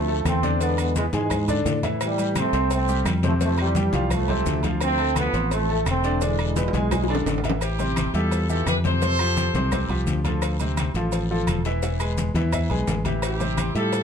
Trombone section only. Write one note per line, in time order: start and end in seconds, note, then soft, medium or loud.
0.00 0.24 F3 medium
0.00 0.23 A3 medium
0.27 0.59 A3 medium
0.27 0.59 C4 loud
0.62 0.78 G#3 medium
0.62 0.78 B3 loud
0.79 0.95 G#3 medium
0.79 0.95 B3 medium
0.97 1.05 E3 medium
0.97 1.04 G#3 medium
1.14 1.54 E3 medium
1.14 1.54 G#3 medium
2.03 2.35 E3 medium
2.03 2.35 G3 loud
2.38 2.70 A3 medium
2.38 2.70 C4 loud
2.73 3.05 A3 medium
2.73 3.04 C4 loud
3.25 3.33 F3 medium
3.25 3.33 A3 medium
3.42 3.58 F3 medium
3.42 3.58 A3 loud
3.60 4.08 E3 medium
3.60 4.08 G3 loud
4.13 4.65 F3 medium
4.13 4.64 A3 loud
4.82 5.15 A3 medium
4.82 5.14 C4 loud
5.18 5.50 F3 medium
5.18 5.50 B3 loud
5.53 5.85 F3 medium
5.53 5.85 A3 loud
5.88 6.20 A3 medium
5.88 6.20 C4 loud
6.23 6.39 E3 medium
6.23 6.39 G#3 medium
6.40 7.41 E3 medium
6.40 7.41 G#3 medium